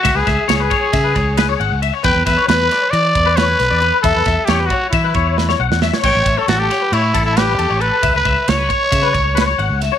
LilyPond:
<<
  \new Staff \with { instrumentName = "Clean electric guitar" } { \time 9/8 \key e \dorian \tempo 4. = 90 e''16 b'16 e''8 cis''16 b'16 cis''8 e''16 b'16 cis''8 b'16 cis''16 fis''8 e''16 cis''16 | g''8 e''16 cis''16 b'8 d''16 cis''16 d''8 b'16 b'16 cis''8 b'16 d''16 b'8 | e''16 b'16 e''8 cis''16 b'16 cis''8 e''16 b'16 cis''8 b'16 cis''16 fis''8 e''16 cis''16 | g''8 e''16 cis''16 a'8 cis''16 b'16 cis''8 a'16 a'16 b'8 a'16 cis''16 a'8 |
e''16 b'16 e''8 cis''16 b'16 cis''8 e''16 b'16 cis''8 b'16 cis''16 fis''8 e''16 cis''16 | }
  \new Staff \with { instrumentName = "Trumpet" } { \time 9/8 \key e \dorian fis'16 gis'8. gis'2. r8 | b'8 b'8 b'4 d''4 b'4. | a'4 g'8 fis'8 e'4. r4 | cis''8. a'16 fis'16 g'8. e'8. e'16 g'4 b'8~ |
b'16 b'8. cis''2. r8 | }
  \new Staff \with { instrumentName = "Fingered electric bass" } { \clef bass \time 9/8 \key e \dorian cis,16 cis,16 cis,16 r16 cis,8 r8 cis8 cis,4 gis,,16 cis,8 r16 | e,16 e,16 e,16 r16 e,8 r8 e8 e,4 b,,16 e,8 r16 | e,16 e,16 e,16 r16 e,8 r8 e8 e,4 b,,16 e,8 r16 | a,,16 a,,16 a,,16 r16 a,,8 r8 a,8 a,,4 e,16 a,,8 r16 |
cis,16 cis,16 cis,16 r16 cis,8 r8 cis8 cis,4 gis,,16 cis,8 r16 | }
  \new DrumStaff \with { instrumentName = "Drums" } \drummode { \time 9/8 <bd cymr>8 <bd cymr sn>8 <cymr sn>8 <bd cymr>8 <bd cymr sn>8 <bd cymr>8 <cymr sn>8 cymr8 cymr8 | <bd cymr>8 <bd cymr sn>8 <cymr sn>8 <cymr sn>8 cymr8 <bd cymr>8 <cymr sn>8 <cymr sn>8 cymr8 | <bd cymr>8 <bd cymr sn>8 <cymr sn>8 <bd cymr>8 <bd cymr>8 <bd cymr>8 sn16 sn8 sn16 sn16 sn16 | <cymc bd>8 <bd cymr>8 <cymr sn>8 <cymr sn>8 cymr8 <bd cymr>8 <cymr sn>8 cymr8 cymr8 |
<bd cymr>8 <bd cymr>8 <cymr sn>8 <bd cymr>8 <bd cymr>8 <bd cymr>8 <cymr sn>8 cymr8 <cymr sn>8 | }
>>